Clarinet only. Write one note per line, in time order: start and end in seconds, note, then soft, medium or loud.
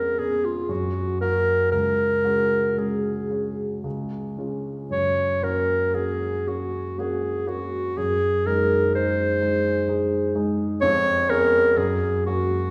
0.00 0.20 A#4 medium
0.19 0.47 G#4 medium
0.45 0.72 F4 medium
0.71 1.20 F#4 medium
1.21 1.71 A#4 medium
1.72 2.80 A#4 medium
2.78 3.85 G#4 medium
4.92 5.45 C#5 medium
5.43 5.96 A#4 medium
5.95 6.49 G#4 medium
6.48 7.01 F#4 medium
6.99 7.50 G#4 medium
7.48 7.99 F#4 medium
7.98 8.48 G#4 medium
8.46 8.94 A#4 medium
8.95 10.33 C5 medium
10.81 11.31 C#5 loud
11.30 11.79 A#4 medium
11.78 12.26 G#4 medium
12.26 12.71 F#4 medium